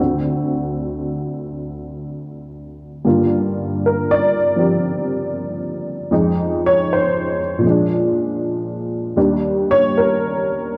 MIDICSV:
0, 0, Header, 1, 2, 480
1, 0, Start_track
1, 0, Tempo, 764331
1, 1912, Time_signature, 4, 2, 24, 8
1, 6764, End_track
2, 0, Start_track
2, 0, Title_t, "Honky-tonk piano"
2, 0, Program_c, 0, 3
2, 0, Note_on_c, 0, 38, 44
2, 0, Note_on_c, 0, 50, 44
2, 0, Note_on_c, 0, 60, 44
2, 0, Note_on_c, 0, 66, 47
2, 104, Control_c, 0, 64, 127
2, 1910, Note_off_c, 0, 50, 0
2, 1913, Note_off_c, 0, 38, 0
2, 1913, Note_on_c, 0, 43, 46
2, 1916, Note_off_c, 0, 60, 0
2, 1916, Note_off_c, 0, 66, 0
2, 1919, Note_on_c, 0, 50, 40
2, 1922, Control_c, 0, 64, 0
2, 1923, Note_on_c, 0, 58, 43
2, 1925, Note_on_c, 0, 65, 50
2, 2017, Control_c, 0, 64, 127
2, 2424, Note_on_c, 0, 70, 68
2, 2564, Note_off_c, 0, 70, 0
2, 2582, Note_on_c, 0, 74, 89
2, 2734, Note_off_c, 0, 74, 0
2, 2864, Note_on_c, 0, 53, 45
2, 2874, Note_on_c, 0, 60, 41
2, 2883, Note_on_c, 0, 67, 46
2, 3829, Note_off_c, 0, 53, 0
2, 3834, Note_off_c, 0, 43, 0
2, 3834, Note_off_c, 0, 60, 0
2, 3837, Note_off_c, 0, 50, 0
2, 3838, Note_off_c, 0, 67, 0
2, 3838, Note_on_c, 0, 41, 54
2, 3838, Note_on_c, 0, 53, 47
2, 3839, Note_off_c, 0, 58, 0
2, 3840, Note_off_c, 0, 65, 0
2, 3841, Control_c, 0, 64, 0
2, 3845, Note_on_c, 0, 56, 51
2, 3845, Note_on_c, 0, 63, 62
2, 3949, Control_c, 0, 64, 127
2, 4185, Note_on_c, 0, 73, 91
2, 4323, Note_off_c, 0, 73, 0
2, 4351, Note_on_c, 0, 72, 76
2, 4647, Note_off_c, 0, 72, 0
2, 4764, Note_on_c, 0, 46, 49
2, 4774, Note_off_c, 0, 53, 0
2, 4784, Note_on_c, 0, 53, 46
2, 4796, Note_off_c, 0, 41, 0
2, 4799, Note_off_c, 0, 56, 0
2, 4799, Note_off_c, 0, 63, 0
2, 4803, Control_c, 0, 64, 0
2, 4809, Note_on_c, 0, 56, 46
2, 4832, Note_on_c, 0, 62, 54
2, 4921, Control_c, 0, 64, 127
2, 5738, Note_off_c, 0, 46, 0
2, 5748, Note_off_c, 0, 53, 0
2, 5753, Note_off_c, 0, 62, 0
2, 5756, Note_on_c, 0, 39, 51
2, 5759, Note_on_c, 0, 51, 47
2, 5759, Note_on_c, 0, 55, 49
2, 5761, Note_off_c, 0, 56, 0
2, 5762, Control_c, 0, 64, 0
2, 5762, Note_on_c, 0, 62, 55
2, 5867, Control_c, 0, 64, 127
2, 6097, Note_on_c, 0, 73, 102
2, 6239, Note_off_c, 0, 73, 0
2, 6265, Note_on_c, 0, 70, 64
2, 6563, Note_off_c, 0, 70, 0
2, 6764, Note_off_c, 0, 39, 0
2, 6764, Note_off_c, 0, 51, 0
2, 6764, Note_off_c, 0, 55, 0
2, 6764, Note_off_c, 0, 62, 0
2, 6764, End_track
0, 0, End_of_file